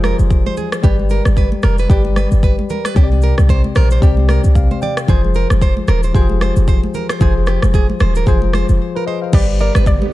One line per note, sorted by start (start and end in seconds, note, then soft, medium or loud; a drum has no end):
0.00 0.14 F1 medium
0.00 0.85 F3 medium
0.00 0.85 F4 medium
0.00 0.83 G4 medium
0.00 0.85 G#4 medium
0.00 0.48 C5 loud
0.00 0.85 D5 loud
0.00 cross-stick medium
0.00 high conga medium
0.04 0.16 A#4 medium
0.04 shaker soft
0.19 0.43 F1 medium
0.19 shaker medium
0.30 kick loud
0.30 shaker medium
0.46 0.55 C5 medium
0.46 high conga medium
0.57 0.69 G#4 medium
0.57 low conga medium
0.57 shaker soft
0.72 cross-stick loud
0.72 shaker medium
0.82 1.20 G1 loud
0.82 1.53 G3 medium
0.82 1.53 G4 medium
0.82 0.96 G4 loud
0.82 1.54 B4 medium
0.82 1.54 D5 loud
0.82 kick loud
0.82 low conga medium
0.82 shaker medium
0.99 high conga medium
1.09 1.22 A#4 medium
1.09 shaker soft
1.25 1.49 G1 loud
1.25 cross-stick medium
1.25 high conga medium
1.25 shaker medium
1.37 1.49 B4 medium
1.37 kick medium
1.37 shaker medium
1.52 high conga medium
1.63 1.87 F1 medium
1.63 1.75 A#4 medium
1.63 cross-stick loud
1.63 low conga medium
1.63 shaker soft
1.78 1.88 B4 medium
1.78 shaker medium
1.89 2.26 G1 medium
1.89 2.59 G3 medium
1.89 2.60 G4 medium
1.89 2.02 G4 medium
1.89 2.60 B4 medium
1.89 2.60 D5 loud
1.89 kick loud
1.89 shaker medium
2.05 high conga medium
2.16 2.29 B4 medium
2.16 cross-stick medium
2.16 high conga medium
2.16 shaker soft
2.32 2.55 G1 medium
2.32 shaker medium
2.43 2.55 B4 medium
2.43 kick loud
2.43 shaker medium
2.59 high conga medium
2.69 2.85 A#4 medium
2.69 low conga medium
2.69 shaker soft
2.85 2.94 B4 medium
2.85 cross-stick loud
2.85 shaker medium
2.95 3.33 C2 loud
2.95 3.65 C3 medium
2.95 3.66 C4 medium
2.95 3.66 G4 medium
2.95 3.08 G4 loud
2.95 3.04 C#5 medium
2.95 kick loud
2.95 low conga medium
2.95 shaker medium
3.03 3.70 D5 loud
3.12 high conga medium
3.22 3.35 A#4 medium
3.22 shaker soft
3.38 3.61 C2 medium
3.38 cross-stick medium
3.38 high conga medium
3.38 shaker medium
3.49 3.61 C5 medium
3.49 kick loud
3.49 shaker medium
3.64 high conga medium
3.75 3.99 A#1 medium
3.75 3.88 A#4 medium
3.75 4.00 C5 medium
3.75 cross-stick loud
3.75 low conga medium
3.75 shaker soft
3.91 4.00 C5 medium
3.91 shaker medium
4.01 4.39 C2 loud
4.01 4.71 C3 medium
4.01 4.72 C4 medium
4.01 4.72 G4 medium
4.01 4.14 G4 medium
4.01 4.73 D5 loud
4.01 kick loud
4.01 shaker medium
4.17 high conga medium
4.29 4.41 A#4 medium
4.29 cross-stick medium
4.29 high conga medium
4.29 shaker soft
4.44 4.67 C2 medium
4.44 shaker medium
4.55 4.80 F5 medium
4.55 kick loud
4.55 shaker medium
4.71 4.80 C5 medium
4.71 high conga medium
4.82 4.94 D5 medium
4.82 5.06 G5 medium
4.82 low conga medium
4.82 shaker soft
4.97 cross-stick loud
4.97 shaker medium
5.07 5.45 F1 loud
5.07 5.78 F3 medium
5.07 5.78 F4 medium
5.07 5.79 G#4 medium
5.07 5.21 G#4 loud
5.07 5.79 C5 loud
5.07 kick loud
5.07 low conga medium
5.07 shaker medium
5.25 high conga medium
5.34 5.47 A#4 medium
5.34 shaker soft
5.50 5.74 F1 medium
5.50 cross-stick medium
5.50 high conga medium
5.50 shaker medium
5.62 5.74 C5 medium
5.62 kick medium
5.62 shaker medium
5.77 high conga medium
5.88 6.11 D#1 medium
5.88 6.00 A#4 medium
5.88 cross-stick medium
5.88 low conga medium
5.88 shaker soft
6.03 6.12 C5 medium
6.03 shaker medium
6.13 6.51 F1 medium
6.13 6.84 F3 medium
6.13 6.84 F4 medium
6.13 6.22 G4 medium
6.13 6.27 G#4 medium
6.13 6.85 C5 loud
6.13 kick loud
6.13 shaker medium
6.21 6.88 G#4 medium
6.29 high conga medium
6.41 6.54 C5 medium
6.41 cross-stick medium
6.41 high conga medium
6.41 shaker soft
6.56 6.80 F1 medium
6.56 shaker medium
6.68 6.80 C5 medium
6.68 kick loud
6.68 shaker medium
6.83 high conga medium
6.94 7.06 A#4 medium
6.94 low conga medium
6.94 shaker soft
7.09 7.19 C5 medium
7.09 cross-stick loud
7.09 shaker medium
7.19 7.58 F1 loud
7.19 7.90 F3 medium
7.19 7.90 F4 medium
7.19 7.91 G#4 medium
7.19 7.33 G#4 loud
7.19 7.91 C5 loud
7.19 kick loud
7.19 low conga medium
7.19 shaker medium
7.46 7.60 G4 medium
7.46 cross-stick medium
7.46 shaker soft
7.62 7.86 F1 medium
7.62 cross-stick medium
7.62 high conga medium
7.62 shaker medium
7.74 7.86 G#4 medium
7.74 kick medium
7.74 shaker medium
7.90 high conga medium
8.00 8.24 D#1 medium
8.00 8.13 C5 medium
8.00 cross-stick loud
8.00 low conga medium
8.00 shaker soft
8.15 8.25 A#4 medium
8.15 shaker medium
8.26 8.64 F1 medium
8.26 8.96 F3 medium
8.26 8.53 F4 medium
8.26 8.54 G#4 medium
8.26 8.39 G#4 medium
8.26 8.54 C5 loud
8.26 kick loud
8.26 low conga medium
8.26 shaker medium
8.42 high conga medium
8.53 8.66 C5 medium
8.53 cross-stick medium
8.53 high conga medium
8.53 shaker soft
8.69 8.79 F1 medium
8.69 shaker medium
8.95 9.06 F4 medium
8.95 9.05 A#4 medium
8.95 9.06 B4 medium
9.07 9.22 G#4 medium
9.07 9.19 C5 medium
9.07 9.21 D#5 medium
9.22 9.47 C5 medium
9.22 9.47 F5 medium
9.32 9.70 G1 loud
9.32 10.13 D3 medium
9.32 10.02 G3 medium
9.32 10.13 B3 medium
9.32 10.03 G4 medium
9.32 10.13 G4 medium
9.32 9.46 G4 medium
9.32 10.03 B4 medium
9.32 9.59 D5 medium
9.32 10.04 D5 medium
9.32 kick loud
9.32 crash loud
9.32 low conga medium
9.32 shaker medium
9.59 9.72 A#4 medium
9.59 9.86 D5 medium
9.59 shaker soft
9.75 9.98 G1 loud
9.75 9.84 B4 medium
9.75 cross-stick loud
9.75 high conga medium
9.75 shaker medium
9.86 10.11 D5 medium
9.86 kick loud
9.86 shaker medium
10.02 high conga medium